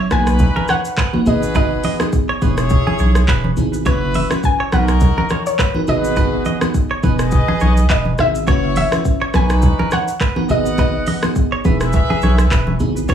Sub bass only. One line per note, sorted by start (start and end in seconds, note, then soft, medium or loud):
0.11 0.48 B1 loud
1.26 1.74 G#1 loud
2.42 2.79 E1 loud
2.99 3.23 B1 loud
3.28 3.52 E1 loud
3.57 3.87 G#1 loud
3.86 4.23 F#1 loud
4.73 5.10 B1 loud
5.88 6.36 G#1 loud
7.03 7.41 E1 loud
7.61 7.85 B1 loud
7.90 8.14 E1 loud
8.19 8.49 G#1 loud
8.48 8.85 F#1 loud
9.34 9.71 B1 loud
10.49 10.97 G#1 loud
11.65 12.02 E1 loud
12.22 12.46 B1 loud
12.51 12.75 E1 loud
12.80 13.04 G#1 loud
13.09 13.14 F#1 loud